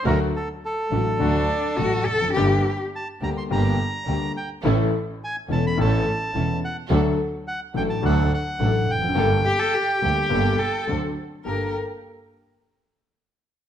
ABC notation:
X:1
M:4/4
L:1/16
Q:1/4=105
K:Gm
V:1 name="Bandoneon"
B2 A2 A8- A2 z2 | z4 a2 b c' b6 g2 | z4 _a2 =a =b a6 ^f2 | z4 ^f2 g a f2 f4 g2- |
g12 z4 | z16 |]
V:2 name="Cello"
z8 D4 ^F2 A2 | G3 z12 z | z16 | z16 |
z2 G A G2 G4 A2 z4 | B2 z12 z2 |]
V:3 name="String section"
[A,D^F]2 z4 [A,DF]2 [A,DF]2 z2 [A,DF]2 z2 | [B,DG]2 z4 [B,DG]2 [B,DG]2 z2 [B,DG]2 z2 | [^C=EA]2 z4 [CEA]2 [CEA]2 z2 [CEA]2 z2 | [D^FA]2 z4 [DFA]2 [DFA]2 z2 [DFA]2 z2 |
[B,GA]2 z4 [B,GA]2 [B,GA]2 z2 [D^Fc]2 z2 | [B,GA]2 z12 z2 |]
V:4 name="Grand piano" clef=bass
[D,,D,^F,A,^F]2 z4 [A,,,A,,D,F,A,F]2 [D,,D,F,A,F]2 z2 [A,,,A,,D,F,A,F]2 z/2 =E,,/2 =F,,/2 ^F,,/2 | [G,,,G,,D,G,B,G]2 z4 [D,,D,G,B,G]2 [G,,,G,,D,G,B,G]2 z2 [D,,D,G,B,G]2 z2 | [A,,,A,,=E,A,^CA]2 z4 [=E,,,=E,,E,A,CA]2 [A,,,A,,E,A,CA]2 z2 [E,,,E,,E,A,CA]2 z2 | [D,,D,^F,A,DA]2 z4 [A,,,A,,F,A,DA]2 [D,,D,F,A,DA]2 z2 [A,,,A,,F,A,DA]2 z/2 =E,,/2 =F,,/2 ^F,,/2 |
[G,,,G,,G,B,DA]2 z4 [D,,D,G,B,DA]2 [G,,,G,,G,B,DA]2 z2 [D,,D,^F,CDA]2 z2 | [G,,B,GA]2 z12 z2 |]
V:5 name="Double bass" clef=bass
D,,2 z4 A,,,2 D,,2 z2 A,,,2 F,,,2 | G,,,2 z4 D,,2 G,,,2 z2 D,,2 z2 | A,,,2 z4 =E,,,2 A,,,2 z2 E,,,2 z2 | D,,2 z4 A,,,2 D,,2 z2 A,,,2 F,,,2 |
G,,,2 z4 D,,2 G,,,2 z2 D,,2 z2 | G,,,2 z12 z2 |]